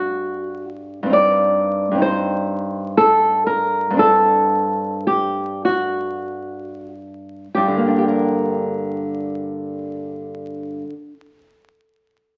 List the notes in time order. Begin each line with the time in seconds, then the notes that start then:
Already playing: G2 C4 D4 F#4
1.03 G2 C4
1.10 D#4 D5
1.91 G2 C4
1.98 D#4
2.02 C5
2.97 A4
3.47 A#4
3.90 G2 C4
3.97 D4 A4
5.07 G4
5.65 F#4
7.55 G2 G4
7.68 D3
7.77 A#3
7.88 D4
7.98 G4
8.08 A#4